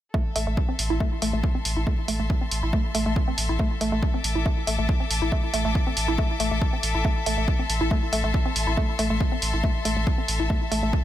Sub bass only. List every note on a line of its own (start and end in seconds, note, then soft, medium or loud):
0.36 0.46 A1 loud
0.47 0.57 A1 medium
0.79 0.90 A1 medium
0.90 1.00 A1 medium
1.22 1.33 A1 loud
1.34 1.43 A1 medium
1.65 1.76 A1 loud
1.77 1.87 A1 medium
2.08 2.19 A1 loud
2.20 2.30 A1 medium
2.51 2.62 A1 medium
2.63 2.73 A1 medium
2.95 3.05 A1 loud
3.06 3.16 A1 medium
3.38 3.49 A1 loud
3.49 3.59 A1 medium
3.81 3.92 A1 loud
3.92 4.02 A1 medium
4.24 4.35 A1 loud
4.35 4.46 A1 medium
4.67 4.78 A1 loud
4.79 4.89 A1 medium
5.10 5.21 A1 loud
5.22 5.32 A1 medium
5.54 5.65 A1 loud
5.65 5.75 A1 medium
5.97 6.07 A1 medium
6.08 6.18 A1 medium
6.40 6.51 A1 loud
6.51 6.61 A1 medium
6.83 6.94 A1 loud
6.95 7.05 A1 medium
7.26 7.37 A1 loud
7.38 7.48 A1 medium
7.69 7.80 A1 loud
7.81 7.91 A1 medium
8.13 8.23 A1 loud
8.24 8.34 A1 medium
8.56 8.67 A1 loud
8.67 8.77 A1 medium
8.99 9.10 A1 loud
9.10 9.20 A1 medium
9.42 9.53 A1 loud
9.54 9.64 A1 medium
9.85 9.96 A1 loud
9.97 10.07 A1 medium
10.29 10.39 A1 loud
10.40 10.50 A1 medium
10.72 10.82 A1 loud
10.83 10.93 A1 medium